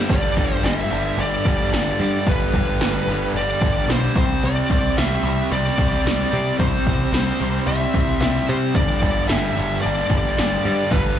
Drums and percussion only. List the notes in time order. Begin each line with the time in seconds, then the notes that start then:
0.09 kick, crash, ride
0.37 kick, ride
0.64 snare, ride
0.91 ride
1.18 ride
1.45 kick, ride
1.73 snare, ride
2.00 ride
2.27 kick, ride
2.54 kick, ride
2.80 snare, ride
3.07 ride
3.34 ride
3.61 kick, ride
3.89 snare, ride
4.16 kick, ride
4.42 crash
4.70 kick, ride
4.97 snare, ride
5.24 ride
5.52 ride
5.67 snare
5.78 kick, ride
6.06 snare, ride
6.33 ride
6.60 kick, ride
6.87 kick, ride
7.13 snare, ride
7.41 ride
7.68 ride
7.94 kick, ride
8.21 snare, ride
8.48 ride
8.74 kick, crash
9.02 kick, ride
9.28 snare, ride
9.56 ride
9.83 ride
9.98 snare
10.09 kick, ride
10.37 snare, ride
10.65 ride
10.91 kick, ride